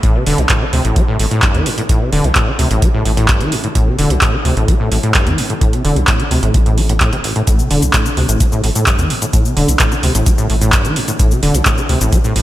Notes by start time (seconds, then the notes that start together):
0.03 A1 A2, kick, closed hi-hat
0.15 C3
0.26 E1 D3, open hi-hat
0.38 C2 A2, closed hi-hat
0.49 A2, kick, clap, closed hi-hat
0.62 E3
0.73 D2 C3, open hi-hat
0.85 A1 A2, closed hi-hat
0.96 A3, kick, closed hi-hat
1.08 A2
1.19 A1 A2, open hi-hat
1.31 A2, closed hi-hat
1.42 G2, kick, clap, closed hi-hat
1.55 E2 E3, closed hi-hat
1.66 G2, open hi-hat
1.78 A2, closed hi-hat
1.89 A2, kick, closed hi-hat
2.01 C3
2.12 E1 D3, open hi-hat
2.24 C2 A2, closed hi-hat
2.35 A2, kick, clap, closed hi-hat
2.48 E3
2.59 D2 C3, open hi-hat
2.71 A1 A2, closed hi-hat
2.82 A3, kick, closed hi-hat
2.94 A2
3.05 A1 A2, open hi-hat
3.17 A2, closed hi-hat
3.28 kick, clap, closed hi-hat
3.41 A1 E3, closed hi-hat
3.52 G2, open hi-hat
3.64 A2, closed hi-hat
3.75 A1 A2, kick, closed hi-hat
3.87 C3
3.99 E1 D3, open hi-hat
4.10 C2 A2, closed hi-hat
4.21 A2, kick, clap, closed hi-hat
4.34 E3
4.45 D2 C3, open hi-hat
4.57 A1 A2, closed hi-hat
4.68 A3, kick, closed hi-hat
4.80 A2
4.92 A1 A2, open hi-hat
5.03 A2, closed hi-hat
5.14 G2, kick, clap, closed hi-hat
5.27 E2 E3, closed hi-hat
5.38 G2, open hi-hat
5.50 A2, closed hi-hat
5.61 A2, kick, closed hi-hat
5.73 C3, closed hi-hat
5.85 E1 D3, open hi-hat
5.96 C2 A2, closed hi-hat
6.07 A2, kick, clap, closed hi-hat
6.20 E3, closed hi-hat
6.31 D2 C3, open hi-hat
6.43 A1 A2, closed hi-hat
6.54 A1 A3, kick, closed hi-hat
6.66 A2, closed hi-hat
6.78 A3, open hi-hat
6.89 A2, closed hi-hat
7.00 A2, kick, clap, closed hi-hat
7.13 A1 C3, closed hi-hat
7.24 A1, open hi-hat
7.36 A2, closed hi-hat
7.47 A1 A2, kick, closed hi-hat, shaker
7.59 C3, shaker
7.71 E1 D3, open hi-hat
7.82 C2 A2, closed hi-hat, shaker
7.93 A2, kick, clap, closed hi-hat, shaker
8.06 E3, shaker
8.17 D2 C3, open hi-hat
8.29 A1 A2, closed hi-hat, shaker
8.40 A3, kick, closed hi-hat, shaker
8.52 A2, shaker
8.64 A1 A2, open hi-hat
8.75 A2, closed hi-hat, shaker
8.86 G2, kick, clap, closed hi-hat, shaker
8.99 E2 E3, closed hi-hat, shaker
9.10 G2, open hi-hat
9.22 A2, closed hi-hat, shaker
9.33 A2, kick, closed hi-hat, shaker
9.45 C3, shaker
9.57 E1 D3, open hi-hat
9.68 C2 A2, closed hi-hat, shaker
9.79 A2, kick, clap, closed hi-hat, shaker
9.92 E3, shaker
10.03 D2 C3, open hi-hat
10.15 A1 A2, closed hi-hat, shaker
10.26 A3, kick, closed hi-hat, shaker
10.38 A2, shaker
10.50 A1 A2, open hi-hat
10.61 A2, closed hi-hat, shaker
10.72 G2, kick, clap, closed hi-hat, shaker
10.85 A1 E3, closed hi-hat, shaker
10.96 G2, open hi-hat
11.08 A2, closed hi-hat, shaker
11.19 A1 A2, kick, closed hi-hat, shaker
11.31 C3, shaker
11.43 E1 D3, open hi-hat
11.54 C2 A2, closed hi-hat, shaker
11.65 A2, kick, clap, closed hi-hat, shaker
11.78 E3, shaker
11.89 D2 C3, open hi-hat
12.01 A1 A2, closed hi-hat, shaker
12.12 A3, kick, closed hi-hat, shaker
12.24 A2, shaker
12.36 A1 A2, open hi-hat